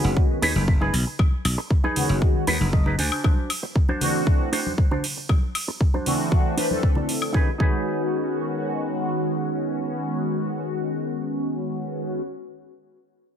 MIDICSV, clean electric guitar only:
0, 0, Header, 1, 3, 480
1, 0, Start_track
1, 0, Key_signature, 5, "major"
1, 0, Tempo, 512821
1, 1115, Time_signature, 4, 2, 24, 8
1, 12512, End_track
2, 0, Start_track
2, 0, Title_t, "Clean electric guitar"
2, 0, Program_c, 0, 27
2, 0, Note_on_c, 0, 63, 84
2, 0, Note_on_c, 0, 68, 79
2, 0, Note_on_c, 0, 71, 95
2, 97, Note_off_c, 0, 63, 0
2, 97, Note_off_c, 0, 68, 0
2, 98, Note_off_c, 0, 71, 0
2, 395, Note_on_c, 0, 63, 108
2, 398, Note_on_c, 0, 68, 98
2, 403, Note_on_c, 0, 71, 121
2, 578, Note_off_c, 0, 63, 0
2, 578, Note_off_c, 0, 68, 0
2, 578, Note_off_c, 0, 71, 0
2, 756, Note_on_c, 0, 63, 86
2, 761, Note_on_c, 0, 68, 81
2, 766, Note_on_c, 0, 71, 100
2, 874, Note_off_c, 0, 63, 0
2, 875, Note_off_c, 0, 68, 0
2, 875, Note_off_c, 0, 71, 0
2, 1719, Note_on_c, 0, 63, 88
2, 1723, Note_on_c, 0, 68, 80
2, 1727, Note_on_c, 0, 71, 96
2, 2018, Note_off_c, 0, 63, 0
2, 2018, Note_off_c, 0, 68, 0
2, 2019, Note_off_c, 0, 71, 0
2, 2315, Note_on_c, 0, 63, 110
2, 2317, Note_on_c, 0, 68, 97
2, 2318, Note_on_c, 0, 71, 67
2, 2320, Note_off_c, 0, 71, 0
2, 2320, Note_on_c, 0, 71, 121
2, 2497, Note_off_c, 0, 63, 0
2, 2498, Note_off_c, 0, 68, 0
2, 2498, Note_off_c, 0, 71, 0
2, 2555, Note_on_c, 0, 75, 71
2, 2676, Note_on_c, 0, 63, 89
2, 2681, Note_on_c, 0, 68, 80
2, 2688, Note_on_c, 0, 71, 96
2, 2778, Note_off_c, 0, 75, 0
2, 2788, Note_off_c, 0, 63, 0
2, 2792, Note_off_c, 0, 68, 0
2, 2792, Note_on_c, 0, 62, 88
2, 2795, Note_on_c, 0, 66, 83
2, 2796, Note_off_c, 0, 71, 0
2, 2800, Note_on_c, 0, 72, 100
2, 2801, Note_on_c, 0, 80, 70
2, 3017, Note_off_c, 0, 80, 0
2, 3274, Note_off_c, 0, 62, 0
2, 3275, Note_off_c, 0, 66, 0
2, 3275, Note_off_c, 0, 72, 0
2, 3637, Note_on_c, 0, 62, 85
2, 3640, Note_on_c, 0, 66, 78
2, 3643, Note_on_c, 0, 72, 93
2, 3936, Note_off_c, 0, 62, 0
2, 3937, Note_off_c, 0, 66, 0
2, 3937, Note_off_c, 0, 72, 0
2, 4232, Note_on_c, 0, 62, 104
2, 4236, Note_on_c, 0, 66, 97
2, 4239, Note_on_c, 0, 72, 116
2, 4416, Note_off_c, 0, 62, 0
2, 4417, Note_off_c, 0, 66, 0
2, 4417, Note_off_c, 0, 72, 0
2, 4597, Note_on_c, 0, 62, 85
2, 4600, Note_on_c, 0, 66, 77
2, 4602, Note_on_c, 0, 72, 95
2, 4714, Note_off_c, 0, 62, 0
2, 4715, Note_off_c, 0, 66, 0
2, 4715, Note_off_c, 0, 72, 0
2, 5558, Note_on_c, 0, 62, 82
2, 5561, Note_on_c, 0, 66, 73
2, 5563, Note_on_c, 0, 72, 91
2, 5857, Note_off_c, 0, 62, 0
2, 5857, Note_off_c, 0, 66, 0
2, 5858, Note_off_c, 0, 72, 0
2, 6150, Note_on_c, 0, 62, 102
2, 6155, Note_on_c, 0, 66, 92
2, 6161, Note_on_c, 0, 72, 114
2, 6335, Note_off_c, 0, 62, 0
2, 6336, Note_off_c, 0, 66, 0
2, 6337, Note_off_c, 0, 72, 0
2, 6516, Note_on_c, 0, 62, 82
2, 6520, Note_on_c, 0, 66, 74
2, 6526, Note_on_c, 0, 74, 91
2, 6634, Note_off_c, 0, 62, 0
2, 6635, Note_off_c, 0, 66, 0
2, 6635, Note_off_c, 0, 74, 0
2, 6856, Note_on_c, 0, 63, 76
2, 6875, Note_on_c, 0, 68, 69
2, 6893, Note_on_c, 0, 71, 83
2, 7001, Note_off_c, 0, 63, 0
2, 7011, Note_off_c, 0, 68, 0
2, 7021, Note_off_c, 0, 71, 0
2, 7097, Note_on_c, 0, 63, 75
2, 7115, Note_on_c, 0, 68, 69
2, 7134, Note_on_c, 0, 71, 82
2, 11418, Note_off_c, 0, 63, 0
2, 11435, Note_off_c, 0, 68, 0
2, 11454, Note_off_c, 0, 71, 0
2, 12512, End_track
3, 0, Start_track
3, 0, Title_t, "Muted clean electric guitar strokes"
3, 999, Note_on_c, 9, 29, 32
3, 1093, Note_off_c, 9, 29, 0
3, 1478, Note_on_c, 9, 29, 111
3, 1572, Note_off_c, 9, 29, 0
3, 1596, Note_on_c, 9, 29, 33
3, 1689, Note_off_c, 9, 29, 0
3, 3396, Note_on_c, 9, 29, 109
3, 3490, Note_off_c, 9, 29, 0
3, 3513, Note_on_c, 9, 29, 33
3, 3607, Note_off_c, 9, 29, 0
3, 4838, Note_on_c, 9, 29, 31
3, 4932, Note_off_c, 9, 29, 0
3, 5317, Note_on_c, 9, 29, 106
3, 5410, Note_off_c, 9, 29, 0
3, 5433, Note_on_c, 9, 29, 31
3, 5526, Note_off_c, 9, 29, 0
3, 6758, Note_on_c, 9, 29, 30
3, 6851, Note_off_c, 9, 29, 0
3, 12512, End_track
0, 0, End_of_file